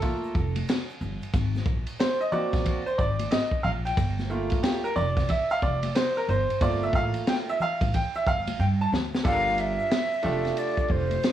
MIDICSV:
0, 0, Header, 1, 5, 480
1, 0, Start_track
1, 0, Tempo, 659341
1, 972, Time_signature, 4, 2, 24, 8
1, 8242, End_track
2, 0, Start_track
2, 0, Title_t, "Flute"
2, 0, Program_c, 0, 73
2, 6743, Note_on_c, 0, 77, 108
2, 6989, Note_on_c, 0, 76, 106
2, 6999, Note_off_c, 0, 77, 0
2, 7704, Note_on_c, 0, 74, 90
2, 7714, Note_off_c, 0, 76, 0
2, 7946, Note_on_c, 0, 72, 96
2, 7957, Note_off_c, 0, 74, 0
2, 8242, Note_off_c, 0, 72, 0
2, 8242, End_track
3, 0, Start_track
3, 0, Title_t, "Upright piano"
3, 0, Program_c, 1, 0
3, 0, Note_on_c, 1, 69, 71
3, 11, Note_on_c, 1, 57, 46
3, 15, Note_on_c, 1, 58, 43
3, 18, Note_on_c, 1, 65, 51
3, 227, Note_off_c, 1, 57, 0
3, 229, Note_off_c, 1, 58, 0
3, 231, Note_off_c, 1, 65, 0
3, 376, Note_off_c, 1, 69, 0
3, 1453, Note_on_c, 1, 72, 86
3, 1596, Note_off_c, 1, 72, 0
3, 1607, Note_on_c, 1, 75, 86
3, 1688, Note_on_c, 1, 58, 52
3, 1691, Note_on_c, 1, 74, 87
3, 1692, Note_on_c, 1, 60, 51
3, 1695, Note_off_c, 1, 75, 0
3, 1698, Note_on_c, 1, 66, 65
3, 2036, Note_off_c, 1, 58, 0
3, 2038, Note_off_c, 1, 60, 0
3, 2041, Note_off_c, 1, 66, 0
3, 2085, Note_on_c, 1, 72, 84
3, 2098, Note_off_c, 1, 74, 0
3, 2171, Note_on_c, 1, 74, 81
3, 2174, Note_off_c, 1, 72, 0
3, 2410, Note_on_c, 1, 75, 89
3, 2419, Note_off_c, 1, 74, 0
3, 2646, Note_on_c, 1, 77, 89
3, 2658, Note_off_c, 1, 75, 0
3, 2682, Note_off_c, 1, 77, 0
3, 2805, Note_on_c, 1, 79, 99
3, 3127, Note_on_c, 1, 57, 56
3, 3130, Note_on_c, 1, 58, 52
3, 3135, Note_on_c, 1, 65, 59
3, 3257, Note_off_c, 1, 79, 0
3, 3370, Note_on_c, 1, 67, 86
3, 3475, Note_off_c, 1, 57, 0
3, 3476, Note_off_c, 1, 58, 0
3, 3479, Note_off_c, 1, 65, 0
3, 3524, Note_on_c, 1, 70, 85
3, 3530, Note_off_c, 1, 67, 0
3, 3610, Note_on_c, 1, 74, 95
3, 3613, Note_off_c, 1, 70, 0
3, 3854, Note_on_c, 1, 76, 93
3, 3858, Note_off_c, 1, 74, 0
3, 4010, Note_on_c, 1, 77, 96
3, 4012, Note_off_c, 1, 76, 0
3, 4088, Note_off_c, 1, 77, 0
3, 4096, Note_on_c, 1, 74, 86
3, 4317, Note_off_c, 1, 74, 0
3, 4333, Note_on_c, 1, 72, 91
3, 4492, Note_off_c, 1, 72, 0
3, 4492, Note_on_c, 1, 70, 85
3, 4577, Note_off_c, 1, 70, 0
3, 4580, Note_on_c, 1, 72, 87
3, 4813, Note_on_c, 1, 57, 54
3, 4815, Note_on_c, 1, 58, 49
3, 4820, Note_on_c, 1, 65, 62
3, 4820, Note_on_c, 1, 74, 96
3, 4823, Note_off_c, 1, 72, 0
3, 4973, Note_on_c, 1, 76, 93
3, 4975, Note_off_c, 1, 74, 0
3, 5058, Note_off_c, 1, 76, 0
3, 5061, Note_on_c, 1, 77, 96
3, 5304, Note_off_c, 1, 77, 0
3, 5305, Note_on_c, 1, 79, 105
3, 5341, Note_off_c, 1, 79, 0
3, 5456, Note_on_c, 1, 76, 105
3, 5493, Note_off_c, 1, 76, 0
3, 5503, Note_off_c, 1, 57, 0
3, 5504, Note_off_c, 1, 58, 0
3, 5507, Note_off_c, 1, 65, 0
3, 5545, Note_on_c, 1, 77, 103
3, 5762, Note_off_c, 1, 77, 0
3, 5782, Note_on_c, 1, 79, 98
3, 5936, Note_off_c, 1, 79, 0
3, 5937, Note_on_c, 1, 76, 101
3, 6019, Note_off_c, 1, 76, 0
3, 6023, Note_on_c, 1, 77, 95
3, 6259, Note_on_c, 1, 79, 99
3, 6264, Note_off_c, 1, 77, 0
3, 6295, Note_off_c, 1, 79, 0
3, 6415, Note_on_c, 1, 81, 89
3, 6468, Note_off_c, 1, 81, 0
3, 6724, Note_on_c, 1, 69, 69
3, 6730, Note_on_c, 1, 62, 60
3, 6733, Note_on_c, 1, 65, 58
3, 6735, Note_off_c, 1, 69, 0
3, 6736, Note_on_c, 1, 67, 62
3, 6739, Note_on_c, 1, 69, 58
3, 6788, Note_on_c, 1, 70, 76
3, 6797, Note_off_c, 1, 69, 0
3, 7207, Note_off_c, 1, 62, 0
3, 7209, Note_off_c, 1, 65, 0
3, 7210, Note_off_c, 1, 67, 0
3, 7236, Note_off_c, 1, 70, 0
3, 7443, Note_on_c, 1, 57, 70
3, 7446, Note_on_c, 1, 62, 66
3, 7450, Note_on_c, 1, 65, 67
3, 7454, Note_on_c, 1, 67, 63
3, 7460, Note_on_c, 1, 69, 72
3, 8105, Note_off_c, 1, 57, 0
3, 8107, Note_off_c, 1, 62, 0
3, 8109, Note_off_c, 1, 65, 0
3, 8111, Note_off_c, 1, 67, 0
3, 8114, Note_off_c, 1, 69, 0
3, 8242, End_track
4, 0, Start_track
4, 0, Title_t, "Upright bass"
4, 0, Program_c, 2, 32
4, 255, Note_on_c, 2, 29, 83
4, 439, Note_off_c, 2, 29, 0
4, 735, Note_on_c, 2, 31, 85
4, 853, Note_off_c, 2, 31, 0
4, 974, Note_on_c, 2, 32, 97
4, 1158, Note_off_c, 2, 32, 0
4, 1208, Note_on_c, 2, 34, 88
4, 1329, Note_off_c, 2, 34, 0
4, 1847, Note_on_c, 2, 34, 83
4, 1913, Note_off_c, 2, 34, 0
4, 2176, Note_on_c, 2, 32, 83
4, 2359, Note_off_c, 2, 32, 0
4, 2654, Note_on_c, 2, 34, 98
4, 2838, Note_off_c, 2, 34, 0
4, 2893, Note_on_c, 2, 31, 108
4, 3262, Note_off_c, 2, 31, 0
4, 3612, Note_on_c, 2, 29, 89
4, 3797, Note_off_c, 2, 29, 0
4, 4094, Note_on_c, 2, 29, 89
4, 4278, Note_off_c, 2, 29, 0
4, 4575, Note_on_c, 2, 31, 98
4, 4693, Note_off_c, 2, 31, 0
4, 4814, Note_on_c, 2, 31, 111
4, 4998, Note_off_c, 2, 31, 0
4, 5047, Note_on_c, 2, 33, 95
4, 5168, Note_off_c, 2, 33, 0
4, 5686, Note_on_c, 2, 33, 91
4, 5752, Note_off_c, 2, 33, 0
4, 6017, Note_on_c, 2, 31, 79
4, 6200, Note_off_c, 2, 31, 0
4, 6256, Note_on_c, 2, 43, 100
4, 6439, Note_off_c, 2, 43, 0
4, 6495, Note_on_c, 2, 38, 91
4, 6679, Note_off_c, 2, 38, 0
4, 6733, Note_on_c, 2, 31, 98
4, 7103, Note_off_c, 2, 31, 0
4, 7453, Note_on_c, 2, 29, 82
4, 7638, Note_off_c, 2, 29, 0
4, 7934, Note_on_c, 2, 29, 89
4, 8119, Note_off_c, 2, 29, 0
4, 8242, End_track
5, 0, Start_track
5, 0, Title_t, "Drums"
5, 13, Note_on_c, 9, 51, 64
5, 14, Note_on_c, 9, 64, 60
5, 14, Note_on_c, 9, 82, 59
5, 21, Note_on_c, 9, 36, 89
5, 86, Note_off_c, 9, 51, 0
5, 87, Note_off_c, 9, 64, 0
5, 87, Note_off_c, 9, 82, 0
5, 93, Note_off_c, 9, 36, 0
5, 170, Note_on_c, 9, 82, 45
5, 243, Note_off_c, 9, 82, 0
5, 255, Note_on_c, 9, 36, 94
5, 255, Note_on_c, 9, 82, 46
5, 327, Note_off_c, 9, 82, 0
5, 328, Note_off_c, 9, 36, 0
5, 405, Note_on_c, 9, 51, 67
5, 410, Note_on_c, 9, 63, 63
5, 410, Note_on_c, 9, 82, 43
5, 478, Note_off_c, 9, 51, 0
5, 483, Note_off_c, 9, 63, 0
5, 483, Note_off_c, 9, 82, 0
5, 495, Note_on_c, 9, 82, 64
5, 500, Note_on_c, 9, 44, 60
5, 500, Note_on_c, 9, 51, 80
5, 507, Note_on_c, 9, 38, 112
5, 568, Note_off_c, 9, 82, 0
5, 573, Note_off_c, 9, 44, 0
5, 573, Note_off_c, 9, 51, 0
5, 580, Note_off_c, 9, 38, 0
5, 650, Note_on_c, 9, 82, 47
5, 723, Note_off_c, 9, 82, 0
5, 736, Note_on_c, 9, 64, 58
5, 736, Note_on_c, 9, 82, 44
5, 809, Note_off_c, 9, 64, 0
5, 809, Note_off_c, 9, 82, 0
5, 890, Note_on_c, 9, 82, 48
5, 896, Note_on_c, 9, 51, 50
5, 962, Note_off_c, 9, 82, 0
5, 969, Note_off_c, 9, 51, 0
5, 974, Note_on_c, 9, 36, 109
5, 974, Note_on_c, 9, 51, 68
5, 974, Note_on_c, 9, 82, 66
5, 1047, Note_off_c, 9, 36, 0
5, 1047, Note_off_c, 9, 51, 0
5, 1047, Note_off_c, 9, 82, 0
5, 1130, Note_on_c, 9, 63, 47
5, 1130, Note_on_c, 9, 82, 46
5, 1140, Note_on_c, 9, 38, 37
5, 1203, Note_off_c, 9, 63, 0
5, 1203, Note_off_c, 9, 82, 0
5, 1207, Note_on_c, 9, 36, 101
5, 1211, Note_on_c, 9, 82, 40
5, 1213, Note_off_c, 9, 38, 0
5, 1280, Note_off_c, 9, 36, 0
5, 1284, Note_off_c, 9, 82, 0
5, 1358, Note_on_c, 9, 51, 64
5, 1366, Note_on_c, 9, 82, 42
5, 1431, Note_off_c, 9, 51, 0
5, 1439, Note_off_c, 9, 82, 0
5, 1451, Note_on_c, 9, 82, 63
5, 1457, Note_on_c, 9, 44, 54
5, 1457, Note_on_c, 9, 51, 72
5, 1459, Note_on_c, 9, 38, 121
5, 1523, Note_off_c, 9, 82, 0
5, 1529, Note_off_c, 9, 44, 0
5, 1529, Note_off_c, 9, 51, 0
5, 1532, Note_off_c, 9, 38, 0
5, 1606, Note_on_c, 9, 82, 43
5, 1679, Note_off_c, 9, 82, 0
5, 1690, Note_on_c, 9, 64, 70
5, 1690, Note_on_c, 9, 82, 53
5, 1763, Note_off_c, 9, 64, 0
5, 1763, Note_off_c, 9, 82, 0
5, 1844, Note_on_c, 9, 36, 94
5, 1844, Note_on_c, 9, 82, 45
5, 1846, Note_on_c, 9, 51, 52
5, 1855, Note_on_c, 9, 38, 37
5, 1917, Note_off_c, 9, 36, 0
5, 1917, Note_off_c, 9, 82, 0
5, 1919, Note_off_c, 9, 51, 0
5, 1928, Note_off_c, 9, 38, 0
5, 1932, Note_on_c, 9, 64, 62
5, 1932, Note_on_c, 9, 82, 62
5, 1935, Note_on_c, 9, 51, 72
5, 1941, Note_on_c, 9, 36, 87
5, 2004, Note_off_c, 9, 64, 0
5, 2004, Note_off_c, 9, 82, 0
5, 2007, Note_off_c, 9, 51, 0
5, 2014, Note_off_c, 9, 36, 0
5, 2087, Note_on_c, 9, 82, 47
5, 2160, Note_off_c, 9, 82, 0
5, 2172, Note_on_c, 9, 82, 50
5, 2175, Note_on_c, 9, 36, 95
5, 2245, Note_off_c, 9, 82, 0
5, 2248, Note_off_c, 9, 36, 0
5, 2324, Note_on_c, 9, 51, 71
5, 2325, Note_on_c, 9, 63, 59
5, 2325, Note_on_c, 9, 82, 45
5, 2397, Note_off_c, 9, 51, 0
5, 2398, Note_off_c, 9, 63, 0
5, 2398, Note_off_c, 9, 82, 0
5, 2412, Note_on_c, 9, 82, 68
5, 2413, Note_on_c, 9, 44, 60
5, 2413, Note_on_c, 9, 51, 80
5, 2420, Note_on_c, 9, 38, 110
5, 2484, Note_off_c, 9, 82, 0
5, 2486, Note_off_c, 9, 44, 0
5, 2486, Note_off_c, 9, 51, 0
5, 2493, Note_off_c, 9, 38, 0
5, 2559, Note_on_c, 9, 36, 88
5, 2567, Note_on_c, 9, 82, 48
5, 2632, Note_off_c, 9, 36, 0
5, 2640, Note_off_c, 9, 82, 0
5, 2654, Note_on_c, 9, 64, 63
5, 2654, Note_on_c, 9, 82, 45
5, 2727, Note_off_c, 9, 64, 0
5, 2727, Note_off_c, 9, 82, 0
5, 2810, Note_on_c, 9, 82, 48
5, 2815, Note_on_c, 9, 51, 57
5, 2883, Note_off_c, 9, 82, 0
5, 2887, Note_off_c, 9, 51, 0
5, 2891, Note_on_c, 9, 36, 112
5, 2891, Note_on_c, 9, 51, 70
5, 2895, Note_on_c, 9, 82, 72
5, 2964, Note_off_c, 9, 36, 0
5, 2964, Note_off_c, 9, 51, 0
5, 2968, Note_off_c, 9, 82, 0
5, 3050, Note_on_c, 9, 63, 49
5, 3050, Note_on_c, 9, 82, 43
5, 3052, Note_on_c, 9, 38, 36
5, 3123, Note_off_c, 9, 63, 0
5, 3123, Note_off_c, 9, 82, 0
5, 3125, Note_off_c, 9, 38, 0
5, 3133, Note_on_c, 9, 82, 41
5, 3205, Note_off_c, 9, 82, 0
5, 3274, Note_on_c, 9, 51, 60
5, 3289, Note_on_c, 9, 36, 99
5, 3289, Note_on_c, 9, 82, 47
5, 3346, Note_off_c, 9, 51, 0
5, 3362, Note_off_c, 9, 36, 0
5, 3362, Note_off_c, 9, 82, 0
5, 3373, Note_on_c, 9, 44, 51
5, 3373, Note_on_c, 9, 51, 79
5, 3373, Note_on_c, 9, 82, 59
5, 3376, Note_on_c, 9, 38, 116
5, 3446, Note_off_c, 9, 44, 0
5, 3446, Note_off_c, 9, 51, 0
5, 3446, Note_off_c, 9, 82, 0
5, 3448, Note_off_c, 9, 38, 0
5, 3529, Note_on_c, 9, 82, 44
5, 3601, Note_off_c, 9, 82, 0
5, 3610, Note_on_c, 9, 64, 71
5, 3610, Note_on_c, 9, 82, 53
5, 3683, Note_off_c, 9, 64, 0
5, 3683, Note_off_c, 9, 82, 0
5, 3762, Note_on_c, 9, 36, 100
5, 3763, Note_on_c, 9, 51, 54
5, 3766, Note_on_c, 9, 82, 48
5, 3772, Note_on_c, 9, 38, 38
5, 3835, Note_off_c, 9, 36, 0
5, 3836, Note_off_c, 9, 51, 0
5, 3838, Note_off_c, 9, 82, 0
5, 3844, Note_off_c, 9, 38, 0
5, 3847, Note_on_c, 9, 51, 68
5, 3849, Note_on_c, 9, 64, 63
5, 3849, Note_on_c, 9, 82, 59
5, 3858, Note_on_c, 9, 36, 83
5, 3920, Note_off_c, 9, 51, 0
5, 3922, Note_off_c, 9, 64, 0
5, 3922, Note_off_c, 9, 82, 0
5, 3930, Note_off_c, 9, 36, 0
5, 4003, Note_on_c, 9, 82, 47
5, 4076, Note_off_c, 9, 82, 0
5, 4088, Note_on_c, 9, 82, 46
5, 4092, Note_on_c, 9, 36, 91
5, 4161, Note_off_c, 9, 82, 0
5, 4165, Note_off_c, 9, 36, 0
5, 4242, Note_on_c, 9, 51, 74
5, 4243, Note_on_c, 9, 63, 59
5, 4243, Note_on_c, 9, 82, 42
5, 4314, Note_off_c, 9, 51, 0
5, 4316, Note_off_c, 9, 63, 0
5, 4316, Note_off_c, 9, 82, 0
5, 4331, Note_on_c, 9, 82, 66
5, 4334, Note_on_c, 9, 44, 57
5, 4334, Note_on_c, 9, 51, 80
5, 4341, Note_on_c, 9, 38, 109
5, 4404, Note_off_c, 9, 82, 0
5, 4407, Note_off_c, 9, 44, 0
5, 4407, Note_off_c, 9, 51, 0
5, 4413, Note_off_c, 9, 38, 0
5, 4485, Note_on_c, 9, 82, 47
5, 4558, Note_off_c, 9, 82, 0
5, 4573, Note_on_c, 9, 64, 57
5, 4573, Note_on_c, 9, 82, 45
5, 4645, Note_off_c, 9, 64, 0
5, 4645, Note_off_c, 9, 82, 0
5, 4730, Note_on_c, 9, 82, 48
5, 4732, Note_on_c, 9, 51, 52
5, 4803, Note_off_c, 9, 82, 0
5, 4805, Note_off_c, 9, 51, 0
5, 4811, Note_on_c, 9, 36, 114
5, 4811, Note_on_c, 9, 51, 67
5, 4815, Note_on_c, 9, 82, 69
5, 4884, Note_off_c, 9, 36, 0
5, 4884, Note_off_c, 9, 51, 0
5, 4888, Note_off_c, 9, 82, 0
5, 4970, Note_on_c, 9, 63, 46
5, 4970, Note_on_c, 9, 82, 50
5, 5043, Note_off_c, 9, 63, 0
5, 5043, Note_off_c, 9, 82, 0
5, 5045, Note_on_c, 9, 36, 101
5, 5055, Note_on_c, 9, 82, 41
5, 5118, Note_off_c, 9, 36, 0
5, 5128, Note_off_c, 9, 82, 0
5, 5196, Note_on_c, 9, 51, 62
5, 5207, Note_on_c, 9, 82, 44
5, 5269, Note_off_c, 9, 51, 0
5, 5280, Note_off_c, 9, 82, 0
5, 5293, Note_on_c, 9, 44, 52
5, 5293, Note_on_c, 9, 51, 71
5, 5295, Note_on_c, 9, 82, 64
5, 5296, Note_on_c, 9, 38, 126
5, 5366, Note_off_c, 9, 44, 0
5, 5366, Note_off_c, 9, 51, 0
5, 5368, Note_off_c, 9, 82, 0
5, 5369, Note_off_c, 9, 38, 0
5, 5451, Note_on_c, 9, 82, 42
5, 5523, Note_off_c, 9, 82, 0
5, 5534, Note_on_c, 9, 64, 72
5, 5534, Note_on_c, 9, 82, 52
5, 5606, Note_off_c, 9, 64, 0
5, 5606, Note_off_c, 9, 82, 0
5, 5685, Note_on_c, 9, 36, 92
5, 5686, Note_on_c, 9, 51, 59
5, 5687, Note_on_c, 9, 82, 47
5, 5757, Note_off_c, 9, 36, 0
5, 5759, Note_off_c, 9, 51, 0
5, 5759, Note_off_c, 9, 82, 0
5, 5774, Note_on_c, 9, 64, 56
5, 5774, Note_on_c, 9, 82, 59
5, 5777, Note_on_c, 9, 51, 69
5, 5782, Note_on_c, 9, 36, 89
5, 5847, Note_off_c, 9, 64, 0
5, 5847, Note_off_c, 9, 82, 0
5, 5850, Note_off_c, 9, 51, 0
5, 5855, Note_off_c, 9, 36, 0
5, 5928, Note_on_c, 9, 82, 44
5, 6001, Note_off_c, 9, 82, 0
5, 6016, Note_on_c, 9, 36, 94
5, 6016, Note_on_c, 9, 82, 49
5, 6088, Note_off_c, 9, 82, 0
5, 6089, Note_off_c, 9, 36, 0
5, 6168, Note_on_c, 9, 51, 73
5, 6170, Note_on_c, 9, 63, 62
5, 6170, Note_on_c, 9, 82, 46
5, 6241, Note_off_c, 9, 51, 0
5, 6243, Note_off_c, 9, 63, 0
5, 6243, Note_off_c, 9, 82, 0
5, 6256, Note_on_c, 9, 82, 61
5, 6328, Note_off_c, 9, 82, 0
5, 6413, Note_on_c, 9, 82, 48
5, 6486, Note_off_c, 9, 82, 0
5, 6498, Note_on_c, 9, 64, 60
5, 6498, Note_on_c, 9, 82, 44
5, 6505, Note_on_c, 9, 38, 91
5, 6571, Note_off_c, 9, 64, 0
5, 6571, Note_off_c, 9, 82, 0
5, 6577, Note_off_c, 9, 38, 0
5, 6654, Note_on_c, 9, 82, 50
5, 6658, Note_on_c, 9, 38, 81
5, 6727, Note_off_c, 9, 82, 0
5, 6730, Note_off_c, 9, 38, 0
5, 6732, Note_on_c, 9, 51, 61
5, 6733, Note_on_c, 9, 36, 103
5, 6744, Note_on_c, 9, 82, 67
5, 6805, Note_off_c, 9, 51, 0
5, 6806, Note_off_c, 9, 36, 0
5, 6817, Note_off_c, 9, 82, 0
5, 6897, Note_on_c, 9, 63, 41
5, 6897, Note_on_c, 9, 82, 45
5, 6970, Note_off_c, 9, 63, 0
5, 6970, Note_off_c, 9, 82, 0
5, 6972, Note_on_c, 9, 51, 60
5, 6980, Note_on_c, 9, 82, 39
5, 7045, Note_off_c, 9, 51, 0
5, 7053, Note_off_c, 9, 82, 0
5, 7130, Note_on_c, 9, 82, 43
5, 7203, Note_off_c, 9, 82, 0
5, 7215, Note_on_c, 9, 82, 57
5, 7216, Note_on_c, 9, 44, 52
5, 7216, Note_on_c, 9, 51, 69
5, 7219, Note_on_c, 9, 38, 119
5, 7288, Note_off_c, 9, 82, 0
5, 7289, Note_off_c, 9, 44, 0
5, 7289, Note_off_c, 9, 51, 0
5, 7291, Note_off_c, 9, 38, 0
5, 7372, Note_on_c, 9, 82, 41
5, 7444, Note_on_c, 9, 51, 55
5, 7445, Note_off_c, 9, 82, 0
5, 7456, Note_on_c, 9, 64, 74
5, 7456, Note_on_c, 9, 82, 51
5, 7516, Note_off_c, 9, 51, 0
5, 7529, Note_off_c, 9, 64, 0
5, 7529, Note_off_c, 9, 82, 0
5, 7605, Note_on_c, 9, 51, 39
5, 7609, Note_on_c, 9, 82, 45
5, 7613, Note_on_c, 9, 38, 39
5, 7678, Note_off_c, 9, 51, 0
5, 7682, Note_off_c, 9, 82, 0
5, 7686, Note_off_c, 9, 38, 0
5, 7692, Note_on_c, 9, 51, 66
5, 7698, Note_on_c, 9, 82, 60
5, 7765, Note_off_c, 9, 51, 0
5, 7770, Note_off_c, 9, 82, 0
5, 7843, Note_on_c, 9, 36, 83
5, 7849, Note_on_c, 9, 82, 45
5, 7916, Note_off_c, 9, 36, 0
5, 7922, Note_off_c, 9, 82, 0
5, 7923, Note_on_c, 9, 51, 54
5, 7934, Note_on_c, 9, 36, 90
5, 7935, Note_on_c, 9, 82, 49
5, 7996, Note_off_c, 9, 51, 0
5, 8007, Note_off_c, 9, 36, 0
5, 8008, Note_off_c, 9, 82, 0
5, 8086, Note_on_c, 9, 51, 50
5, 8087, Note_on_c, 9, 63, 55
5, 8087, Note_on_c, 9, 82, 41
5, 8159, Note_off_c, 9, 51, 0
5, 8160, Note_off_c, 9, 63, 0
5, 8160, Note_off_c, 9, 82, 0
5, 8173, Note_on_c, 9, 82, 59
5, 8179, Note_on_c, 9, 44, 56
5, 8179, Note_on_c, 9, 51, 74
5, 8185, Note_on_c, 9, 38, 111
5, 8242, Note_off_c, 9, 38, 0
5, 8242, Note_off_c, 9, 44, 0
5, 8242, Note_off_c, 9, 51, 0
5, 8242, Note_off_c, 9, 82, 0
5, 8242, End_track
0, 0, End_of_file